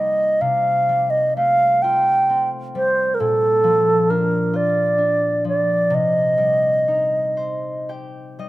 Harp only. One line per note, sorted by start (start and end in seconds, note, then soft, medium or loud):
0.00 0.40 C3 soft
0.00 0.45 G3 soft
0.00 1.43 A#3 soft
0.00 2.15 D#4 soft
0.00 1.32 G4 soft
0.41 3.25 C3 soft
0.89 2.74 G3 soft
1.37 3.26 A3 soft
1.84 4.36 F4 medium
2.30 5.30 C4 soft
2.75 3.25 G3 soft
3.20 5.97 A#2 medium
3.64 5.43 F3 medium
4.10 4.98 D4 soft
4.53 7.06 F4 soft
4.98 6.94 D4 soft
5.45 5.97 F3 soft
5.90 8.49 C3 medium
6.38 8.38 G3 soft
6.88 8.49 D#4 soft
7.37 8.49 C5 soft
7.89 8.49 G4 soft
7.89 8.49 G5 soft
8.39 8.49 G3 soft
8.39 8.49 D#5 soft